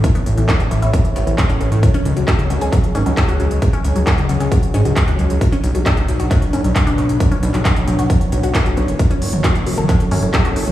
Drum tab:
HH |xxxxxxxxxxxxxxxx|xxxxxxxxxxxxxxxx|xxxxxxxxxxxxxxxx|xxxxxxxxxxxxxxxx|
CP |----x-------x---|----x---x---x---|----x-------x---|----x---x---x---|
T2 |----------------|----------------|----------------|----------------|
BD |o---o---o---o---|o---o---o---o---|o---o---o---o---|o---o---o---o---|

HH |xxxxxxxxxxxxxxxx|xxoxxxoxxxoxxxox|
CP |---xx-------x---|----x---x---x---|
T2 |----------------|---o---o--o----o|
BD |o---o---o---o---|o---o---o---o---|